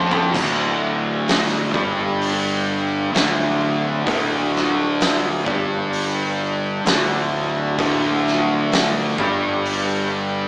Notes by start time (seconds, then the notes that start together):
Already playing: F2 F3
0.11 floor tom
0.34 D1 D2 D3, kick, crash
1.28 snare, open hi-hat
1.74 G1 G2 G3, kick
2.21 open hi-hat
3.13 D1 D2 D3, snare, open hi-hat
4.07 D1 D2 D3, kick, open hi-hat
4.56 snare
5.01 snare, open hi-hat
5.46 G1 G2 G3, kick
5.93 open hi-hat
6.85 D1 D2 D3, snare, open hi-hat
7.78 D1 D2 D3, kick, open hi-hat
8.27 snare
8.72 snare, open hi-hat
9.18 G1 G2 G3, kick
9.65 open hi-hat